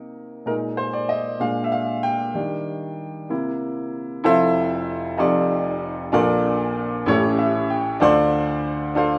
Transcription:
Already playing: C3 A#3 D#4 A#4
0.46 A#2 G#3 D#4 A#4
0.77 C5
0.93 D5
1.09 D#5
1.40 A#2 G#3 D4 F5
1.64 E5
1.72 F5
2.03 G5
2.34 D#3 G3 D4
3.29 C3 A#3 E4
4.24 F1 F2 E4 F4 A4 C5 E5
5.18 F1 F2 D#4 F4 G4 A4 D5
6.12 A#1 A#2 D4 F4 A4 A#4 D5
7.06 A1 A2 C#4 E4 G4 A4 C#5
7.39 E5
7.70 G5
8.00 D2 D3 D4 F4 A4 C5 D5
8.95 D4 F4 A4 C5 F5

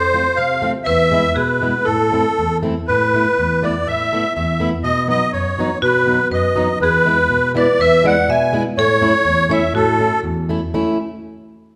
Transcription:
Already playing: F2 A4 C5
0.13 A3 C4 F4
0.36 C3 C5 F5
0.62 A3 C4 F4
0.84 E2 B4 E5
1.12 G#3 B3 E4
1.35 B2 G#4 B4
1.61 G#3 B3 E4
1.85 A2 E4 A4
2.12 A3 C4 E4
2.39 E2
2.63 A3 C4 E4
2.87 A2 B4
3.14 A3 B3 E4
3.38 E2
3.62 A3 B3 E4 D5
3.87 A2 E5
4.13 A3 B3 E4
4.35 E2 E5
4.60 A3 B3 E4
4.84 B2 D#5
5.08 F#3 B3 D#4 D#5
5.33 F#2 C#5
5.59 F#3 B3 D#4
5.82 B2 F#4 B4
6.06 F#3 B3 D#4
6.31 F#2 B4 D#5
6.56 F#3 B3 D#4
6.80 E2 G#4 B4
7.05 G#3 B3 E4
7.30 B2
7.54 G#3 B3 E4 B4 D5
7.79 E2 B4 E5
8.04 G#3 B3 E4 D5 F#5
8.29 B2 E5 G#5
8.53 G#3 B3 E4
8.78 A2 A4 C#5
9.02 A3 C#4 E4
9.25 E2
9.49 A3 C#4 E4 C#5 E5
9.74 A2 F#4 A4
9.99 A3 C#4 E4
10.23 E2
10.49 A3 C#4 E4
10.74 A3 C#4 E4

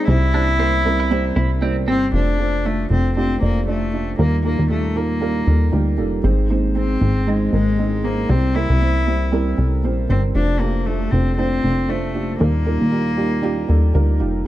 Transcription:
Already playing: G#3 C4 D#4 G4 C5
0.08 C2 C3 G3 C4 E4 C5
0.34 G3 C4 D4 E4 C5
0.59 G3 C4 E4 A#4
0.85 G3 C4 E4 A#4
1.00 E4
1.10 G3 C4 E4 C5
1.36 C2 G3 C4 E4 C5
1.61 G3 C4 E4 D5
1.88 G1 G3 C4 E4 C5
2.13 F1 C3 A3 D4 F4 C5
2.39 A3 D4 F4 C5
2.65 A3 D4 F4 D5
2.90 F1 A3 C4 D4 F4 C5
3.16 A3 C4 D4 F4 G4
3.42 F1 A3 A#3 D4 F4 D5
3.68 A3 D4 F4 D5
3.93 A3 D4 F4 D5
4.19 D#2 A#2 G3 A#3 D#4 F4 A#4
4.44 G3 A#3 D#4 F4 A#4
4.59 D#2
4.70 G3 A3 D#4 F4 A4
4.96 G3 A#3 D#4 F4 A#4
5.21 G3 D#4 F4 A#4
5.46 D#2 G3 D#4 F4 A4
5.72 D2 G3 D#4 F4 G4
5.98 F1 G3 D#4 F4 A4
6.24 G#1 G#2 D#3 G#3 C4 D#4 C5
6.49 G#3 C4 D#4 C5
6.75 G#3 C4 D#4 C5
7.01 G#1 G#3 C4 D#4 C5
7.27 G#3 C4 D#4 D#5
7.53 G#1 G#3 C4 D#4 A#4
7.78 G#3 C4 D#4 D#5
8.04 G#3 A#3 C4 D#4 C5
8.29 C2 C3 G3 C4 E4 C5
8.55 G3 C4 E4 A#4
8.70 C2
8.81 G3 C4 E4 C5
9.07 G3 C4 E4 C5
9.32 G3 C4 E4 A#4
9.58 C2 G3 C4 E4 A4
9.84 A#1 G3 C4 E4 C5
10.09 G1 G3 C4 E4 C5
10.35 F1 C3 A3 D4 F4 C5
10.60 A3 A#3 D4 F4 G4
10.86 A3 D4 F4 C5
11.12 F1 A3 C4 D4 F4 C5
11.37 A3 C4 D4 F4 C5
11.63 F1 A3 D4 F4 C5
11.88 A3 D4 F4 C5
12.14 A3 D4 F4 G4
12.40 D#2 A#2 G3 A#3 D#4 F4 A#4
12.66 G3 D#4 F4 A#4
12.81 D#2
12.91 G3 D#4 F4 G4
13.17 G3 D#4 F4 G4
13.42 G3 D#4 F4 G4
13.68 D#2 G3 D#4 F4 A4
13.94 D2 G3 D#4 F4 A#4
14.20 F1 G3 D#4 F4 G4

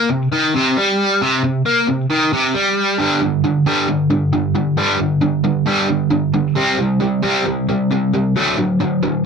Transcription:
0.09 C3
0.32 D#3
0.55 C3
0.77 G3
1.22 C3
1.44 C3
1.66 A#3
1.88 C3
2.10 D#3
2.33 C3
2.54 G3
2.99 G2 D3 G3
3.22 G2 D3
3.44 G2 D3
3.66 G2 D3 G3
3.88 G2 D3
4.10 G2 D3
4.33 G2 D3
4.55 G2 D3
4.77 G2 D3 G3
4.99 G2 D3
5.22 G2 D3
5.44 G2 D3
5.66 G2 D3 G3
5.88 G2 D3
6.11 G2 D3
6.34 G2 D3
6.56 C3 G3 C4
6.79 C3 G3
7.01 C3 G3
7.23 C3 G3 C4
7.46 C3 G3
7.69 C3 G3
7.91 C3 G3
8.13 C3 G3
8.36 D3 F#3 A3
8.58 D3 F#3
8.80 D3 F#3
9.03 D3 F#3

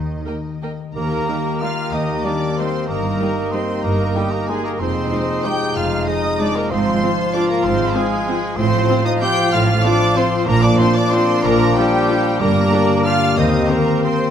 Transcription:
Already playing: D#2 D#3 D#4 G4 A#4 D#5
0.09 A#3
0.26 A#3 G4 A#4 D#5 G5
0.45 A#4
0.62 A#3 A#4 D#5 G5
0.80 A#4
0.95 D#2 D#3 A#3 G4 A#4 A#5
1.03 A#3
1.11 D#4
1.19 G4
1.28 G3 D#4
1.36 D#5
1.45 G5
1.53 A#5
1.61 G3 D#4 F4 F5 G5 F6
1.78 A#4
1.86 G4
1.92 D#2 D#3 D#4 D#5 D#6
2.00 A#3
2.08 D#4
2.17 G4
2.24 G3 D4 D#4 A#4 D5 D6
2.33 D#5
2.42 G5
2.50 A#5
2.58 G3 C4 D#4 C5 G5 C6
2.66 D#5
2.74 A#4
2.81 G4
2.88 G1 G2 A#3 D#4 G4 A#4 D#5 A#5
2.97 G3
3.05 A#3
3.12 D#4
3.20 G3 D#4 G4
3.29 A#4
3.37 D#5
3.46 G5
3.52 G3 C4 D#4 C5 C6
3.62 A#4
3.70 G4
3.78 D#4
3.83 G1 G2 A#3 A#4 A#5
3.93 G3
4.08 D#4
4.15 G3 D#4 G4 G5
4.25 A#4
4.32 A#3 A#4 D#5 A#5
4.48 G3 G#3 D#4 G#4 G#5
4.58 A#4
4.64 A#3 G4 A#4 A#5
4.73 D#4
4.80 F1 F2 G#3 C4 D#4 F4 C5 D#5 C6
4.88 C3
4.96 G#3
5.05 D#4
5.12 G#3 D#4 C5
5.21 G#4
5.45 G#3 D#4 G4 D#5 G5 G6
5.62 C5
5.76 F1 F2 F4 F5 F6
5.84 C3
5.92 G#3
6.00 D#4
6.07 G#3 D#4 C5 D#5 D#6
6.17 G#4
6.25 D#5
6.33 C6
6.39 G#3 D4 D#4 D5 D6
6.49 G#4
6.56 A#3 A#4 C5 A#5
6.64 D#4
6.71 G#1 G#2 F3 C4 F4 C5 F5 C6
6.79 G#3
6.87 F3
6.94 F4
7.02 C4 F4 C5
7.11 F4
7.19 F5
7.34 C4 D4 F4 D5 F5 D6
7.42 F4
7.49 A#3 A#4 C5 A#5
7.57 F4
7.64 G#1 G#2 C4 C5 C6
7.80 F3
7.87 F4
7.94 G#3 C4 F4 G#4 C5 G#5
8.03 F4
8.19 C6
8.27 C4 F4 F5
8.35 F4
8.43 C5
8.51 F4
8.57 A1 A2 F3 C4 F4 C5 F5 C6
8.66 A3
8.73 F3
8.82 F4
8.89 C4 F4 C5
8.98 F4
9.05 D#4 D#5 D#6
9.14 C6
9.21 C4 F4 G4 F5 G5 G6
9.30 F4
9.38 C5
9.45 F4
9.52 A1 A2 F4 F5 F6
9.60 A3
9.68 F3
9.76 F4
9.84 C4 D4 F4 C5 D5 D6
9.92 F4
10.00 F5
10.07 C6
10.16 C4 F4 C5 F5 C6
10.24 F4
10.32 C5
10.40 F4
10.47 A#1 A#2 F3 A#3 D4 F4 A#4 D5 A#5
10.55 F3
10.62 A#3 D4 D5 D6
10.70 F4
10.79 C4 D4 F4 C5 D5 C6
10.87 A#4
10.95 D4 D5 F5 D6
11.04 D6
11.12 C4 D4 F4 C5 F5 C6
11.20 A#4
11.28 D5
11.36 F4
11.43 A#1 A#2 A#3 A#4 A#5
11.52 F3
11.60 A#3
11.68 F4
11.76 G3 D4 F4 G4 D5 G5
11.85 A#4
11.93 F5
12.02 D6
12.09 D4 F4
12.18 A#4
12.26 D5
12.34 F4
12.41 G1 G2 G3 A#3 D4 G4 A#4 D5 A#5
12.49 D3
12.57 A#3
12.65 G4
12.72 D4 G4 D5
12.90 G5
12.98 D6
13.06 D4 F4 G4 F5 G5 F6
13.14 A#4
13.22 D5
13.30 G4
13.37 D#2 D#3 A#3 C4 D#4 C5 D#5 D#6
13.53 A#3
13.62 G4
13.69 A#3 C4 A#4 A#5
13.78 A#4
13.95 C6
14.03 C4 A#4 C5 C6
14.13 A#4
14.21 C5

